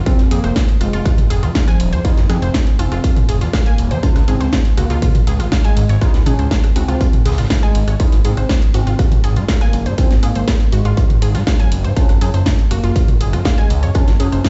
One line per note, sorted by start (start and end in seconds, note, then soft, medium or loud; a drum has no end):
0.06 0.22 C4 medium
0.06 0.22 C4 loud
0.06 0.12 F4 medium
0.06 kick loud
0.06 closed hi-hat medium
0.19 0.27 F1 medium
0.19 snare medium
0.19 closed hi-hat soft
0.31 0.39 F2 medium
0.31 0.63 A#3 loud
0.31 0.37 G#4 medium
0.31 closed hi-hat medium
0.31 closed hi-hat loud
0.44 0.52 F1 medium
0.44 0.49 C5 medium
0.44 cross-stick medium
0.44 closed hi-hat soft
0.56 kick loud
0.56 snare loud
0.56 closed hi-hat medium
0.69 closed hi-hat soft
0.81 0.89 F1 loud
0.81 1.12 G#3 loud
0.81 0.87 F4 medium
0.81 closed hi-hat loud
0.81 closed hi-hat medium
0.93 1.01 F1 medium
0.93 1.03 F4 loud
0.93 closed hi-hat soft
1.05 1.11 F4 medium
1.05 kick loud
1.05 cross-stick medium
1.05 closed hi-hat loud
1.05 closed hi-hat medium
1.05 mid tom medium
1.18 closed hi-hat soft
1.18 mid tom medium
1.30 1.44 F1 medium
1.30 1.36 G#4 medium
1.30 closed hi-hat medium
1.30 closed hi-hat loud
1.43 1.51 F2 medium
1.43 1.55 F4 medium
1.43 closed hi-hat soft
1.55 1.67 F5 medium
1.55 kick loud
1.55 snare loud
1.55 closed hi-hat medium
1.68 1.91 F3 loud
1.68 1.77 G#5 loud
1.68 cross-stick medium
1.68 closed hi-hat soft
1.80 1.94 D#1 medium
1.80 closed hi-hat loud
1.80 closed hi-hat medium
1.93 2.01 F2 medium
1.93 2.04 C5 medium
1.93 closed hi-hat soft
2.04 2.21 D#4 loud
2.04 2.21 D#4 medium
2.04 2.10 F4 medium
2.04 kick loud
2.04 closed hi-hat medium
2.17 2.25 F1 medium
2.17 snare soft
2.17 closed hi-hat soft
2.29 2.38 F2 medium
2.29 2.61 C4 medium
2.29 2.61 C4 loud
2.29 2.35 G#4 medium
2.29 cross-stick medium
2.29 closed hi-hat loud
2.29 closed hi-hat medium
2.42 2.50 F1 medium
2.42 2.48 C5 medium
2.42 closed hi-hat soft
2.54 kick loud
2.54 snare loud
2.54 closed hi-hat medium
2.67 closed hi-hat soft
2.79 2.87 F1 medium
2.79 3.11 C4 loud
2.79 2.85 F4 medium
2.79 closed hi-hat medium
2.79 closed hi-hat loud
2.92 3.00 F1 medium
2.92 3.01 F4 loud
2.92 cross-stick medium
2.92 closed hi-hat soft
3.04 3.10 F4 medium
3.04 kick loud
3.04 closed hi-hat medium
3.17 closed hi-hat soft
3.17 mid tom medium
3.29 3.43 F1 medium
3.29 3.34 G#4 medium
3.29 closed hi-hat loud
3.29 closed hi-hat medium
3.41 3.49 F2 medium
3.41 3.53 F4 medium
3.41 snare soft
3.41 closed hi-hat soft
3.53 3.66 F5 medium
3.53 kick loud
3.53 cross-stick medium
3.53 snare loud
3.53 closed hi-hat medium
3.66 3.90 A#3 loud
3.66 3.75 G#5 loud
3.66 closed hi-hat soft
3.78 3.92 D#1 medium
3.78 closed hi-hat medium
3.78 closed hi-hat loud
3.91 3.99 F2 medium
3.91 4.03 C5 medium
3.91 closed hi-hat soft
4.03 4.19 C#4 loud
4.03 4.09 F4 medium
4.03 kick loud
4.03 closed hi-hat medium
4.16 4.24 C#2 medium
4.16 cross-stick medium
4.16 snare soft
4.16 closed hi-hat soft
4.28 4.36 G#1 loud
4.28 4.59 C4 loud
4.28 4.34 G#4 medium
4.28 closed hi-hat medium
4.28 closed hi-hat loud
4.41 4.48 C#2 medium
4.41 4.46 C5 medium
4.41 closed hi-hat soft
4.52 kick loud
4.52 snare loud
4.52 closed hi-hat medium
4.65 closed hi-hat soft
4.77 4.86 C#2 medium
4.77 5.09 A#3 loud
4.77 4.83 F#4 medium
4.77 cross-stick medium
4.77 closed hi-hat loud
4.77 closed hi-hat medium
4.90 4.98 C#2 medium
4.90 4.99 F4 loud
4.90 closed hi-hat soft
5.02 5.08 F4 medium
5.02 kick loud
5.02 closed hi-hat medium
5.02 mid tom medium
5.14 closed hi-hat soft
5.14 mid tom medium
5.27 5.41 C#2 medium
5.27 5.33 G#4 medium
5.27 closed hi-hat medium
5.27 closed hi-hat loud
5.40 5.48 G#1 medium
5.40 5.51 F4 medium
5.40 cross-stick medium
5.40 closed hi-hat soft
5.52 5.64 F5 medium
5.52 kick loud
5.52 snare loud
5.52 closed hi-hat medium
5.64 5.88 G#3 loud
5.64 5.74 G#5 loud
5.64 closed hi-hat soft
5.77 5.85 G#1 medium
5.77 closed hi-hat loud
5.77 closed hi-hat medium
5.89 5.97 G#1 medium
5.89 6.01 C#5 medium
5.89 closed hi-hat soft
6.01 6.17 D#4 loud
6.01 6.07 F4 medium
6.01 kick loud
6.01 cross-stick medium
6.01 closed hi-hat medium
6.14 6.22 C#2 medium
6.14 snare soft
6.14 closed hi-hat soft
6.25 6.34 G#1 medium
6.25 6.58 C#4 medium
6.25 6.58 C#4 loud
6.25 6.32 G#4 medium
6.25 closed hi-hat medium
6.25 closed hi-hat loud
6.25 mid tom medium
6.39 6.47 C#2 medium
6.39 6.44 C5 medium
6.39 closed hi-hat soft
6.51 kick loud
6.51 snare loud
6.51 closed hi-hat medium
6.64 cross-stick medium
6.64 closed hi-hat soft
6.76 6.84 C#2 medium
6.76 7.07 C4 loud
6.76 7.07 C4 medium
6.76 6.82 F#4 medium
6.76 closed hi-hat loud
6.76 closed hi-hat medium
6.88 6.96 C#2 medium
6.88 6.98 F4 loud
6.88 closed hi-hat soft
7.00 7.06 F4 medium
7.00 kick loud
7.00 closed hi-hat loud
7.00 closed hi-hat medium
7.13 closed hi-hat soft
7.13 mid tom medium
7.25 7.40 C#2 medium
7.25 7.31 G#4 medium
7.25 cross-stick medium
7.25 snare loud
7.25 closed hi-hat medium
7.25 closed hi-hat loud
7.32 snare medium
7.32 closed hi-hat medium
7.38 7.46 G#1 medium
7.38 7.50 F4 medium
7.38 snare medium
7.38 closed hi-hat soft
7.38 closed hi-hat medium
7.44 snare medium
7.44 closed hi-hat medium
7.50 7.62 F5 medium
7.50 kick loud
7.50 snare loud
7.50 closed hi-hat medium
7.63 7.86 G#3 loud
7.63 7.72 G#5 loud
7.63 closed hi-hat soft
7.75 7.83 G#1 medium
7.75 closed hi-hat medium
7.75 closed hi-hat loud
7.88 7.96 G#1 medium
7.88 7.99 C#5 medium
7.88 cross-stick medium
7.88 closed hi-hat soft
8.00 8.16 D#4 medium
8.00 8.16 D#4 loud
8.00 8.06 F4 medium
8.00 kick loud
8.00 closed hi-hat medium
8.12 8.20 G#1 medium
8.12 snare medium
8.12 closed hi-hat soft
8.25 8.33 G#2 medium
8.25 8.56 C4 medium
8.25 8.56 C4 loud
8.25 8.30 G#4 medium
8.25 closed hi-hat loud
8.25 closed hi-hat medium
8.37 8.45 G#1 medium
8.37 8.43 C5 medium
8.37 cross-stick medium
8.37 closed hi-hat soft
8.49 kick loud
8.49 snare loud
8.49 closed hi-hat medium
8.49 closed hi-hat loud
8.62 closed hi-hat soft
8.74 8.82 G#1 medium
8.74 9.06 C4 loud
8.74 8.80 F#4 medium
8.74 closed hi-hat loud
8.74 closed hi-hat medium
8.87 8.95 G#1 medium
8.87 8.96 F4 loud
8.87 closed hi-hat soft
8.99 9.05 F4 medium
8.99 kick loud
8.99 cross-stick medium
8.99 closed hi-hat medium
8.99 closed hi-hat loud
8.99 mid tom medium
9.11 closed hi-hat soft
9.11 mid tom medium
9.24 9.38 G#1 loud
9.24 9.30 G#4 medium
9.24 closed hi-hat loud
9.24 closed hi-hat medium
9.36 9.44 G#2 medium
9.36 9.48 F4 medium
9.36 closed hi-hat soft
9.49 9.61 F5 medium
9.49 kick loud
9.49 snare loud
9.49 closed hi-hat medium
9.61 9.85 A#3 loud
9.61 9.70 G#5 loud
9.61 cross-stick soft
9.61 closed hi-hat soft
9.73 9.88 F#1 medium
9.73 closed hi-hat loud
9.73 closed hi-hat medium
9.86 9.94 G#2 medium
9.86 9.98 C5 medium
9.86 closed hi-hat soft
9.98 10.14 C4 loud
9.98 10.04 F4 medium
9.98 kick loud
9.98 closed hi-hat medium
10.11 10.19 G#1 medium
10.11 snare soft
10.11 closed hi-hat soft
10.23 10.31 G#2 medium
10.23 10.54 A#3 loud
10.23 10.29 G#4 medium
10.23 cross-stick soft
10.23 closed hi-hat loud
10.23 closed hi-hat medium
10.35 10.43 G#1 medium
10.35 10.41 C5 medium
10.35 closed hi-hat soft
10.48 kick loud
10.48 snare loud
10.48 closed hi-hat medium
10.60 closed hi-hat soft
10.72 10.81 G#1 medium
10.72 11.04 G#3 medium
10.72 10.78 F#4 medium
10.72 closed hi-hat medium
10.72 closed hi-hat loud
10.85 10.93 G#1 medium
10.85 10.94 F4 loud
10.85 cross-stick medium
10.85 closed hi-hat soft
10.97 11.03 F4 medium
10.97 kick loud
10.97 closed hi-hat medium
10.97 closed hi-hat loud
11.10 closed hi-hat soft
11.10 mid tom medium
11.22 11.36 G#1 medium
11.22 11.28 G#4 medium
11.22 closed hi-hat loud
11.22 closed hi-hat medium
11.35 11.43 G#2 medium
11.35 11.46 F4 medium
11.35 snare soft
11.35 closed hi-hat soft
11.47 11.59 F5 medium
11.47 kick loud
11.47 cross-stick medium
11.47 snare loud
11.47 closed hi-hat medium
11.59 11.83 F#3 loud
11.59 11.69 G#5 loud
11.59 closed hi-hat soft
11.71 11.86 F#1 loud
11.71 closed hi-hat medium
11.71 closed hi-hat loud
11.84 11.92 G#2 medium
11.84 11.96 C5 medium
11.84 closed hi-hat soft
11.96 12.12 C#4 loud
11.96 12.02 F4 medium
11.96 kick loud
11.96 closed hi-hat medium
12.09 12.17 F#1 medium
12.09 cross-stick medium
12.09 snare soft
12.09 closed hi-hat soft
12.21 12.29 F#2 medium
12.21 12.53 C#4 loud
12.21 12.27 G#4 medium
12.21 closed hi-hat medium
12.21 closed hi-hat loud
12.34 12.42 F#1 medium
12.34 12.40 C5 medium
12.34 closed hi-hat soft
12.46 kick loud
12.46 snare loud
12.46 closed hi-hat medium
12.46 closed hi-hat loud
12.59 closed hi-hat soft
12.71 12.79 F#1 medium
12.71 13.02 A#3 loud
12.71 12.77 F#4 medium
12.71 cross-stick medium
12.71 closed hi-hat medium
12.71 closed hi-hat loud
12.84 12.91 F#1 medium
12.84 12.93 F4 loud
12.84 closed hi-hat soft
12.96 13.01 F4 medium
12.96 kick loud
12.96 closed hi-hat loud
12.96 closed hi-hat medium
12.96 mid tom medium
13.08 closed hi-hat soft
13.08 mid tom medium
13.21 13.35 F#1 medium
13.21 13.26 G#4 medium
13.21 closed hi-hat medium
13.21 closed hi-hat loud
13.33 13.41 F#2 medium
13.33 13.45 F4 medium
13.33 cross-stick medium
13.33 closed hi-hat soft
13.45 13.57 F5 medium
13.45 kick loud
13.45 snare loud
13.45 closed hi-hat medium
13.58 13.81 G#3 loud
13.58 13.67 G#5 loud
13.58 closed hi-hat soft
13.70 13.84 C#2 medium
13.70 closed hi-hat medium
13.70 closed hi-hat loud
13.83 13.91 F#2 medium
13.83 13.94 C#5 medium
13.83 closed hi-hat soft
13.94 14.11 C#4 loud
13.94 14.01 F4 medium
13.94 kick loud
13.94 cross-stick medium
13.94 closed hi-hat medium
14.08 14.15 F#1 medium
14.08 snare soft
14.08 closed hi-hat soft
14.19 14.28 F#2 medium
14.19 14.49 C#4 loud
14.19 14.49 C#4 medium
14.19 14.25 G#4 medium
14.19 closed hi-hat medium
14.19 closed hi-hat loud
14.32 14.40 F#1 medium
14.32 14.38 C5 medium
14.32 closed hi-hat soft
14.44 kick loud
14.44 snare loud
14.44 closed hi-hat medium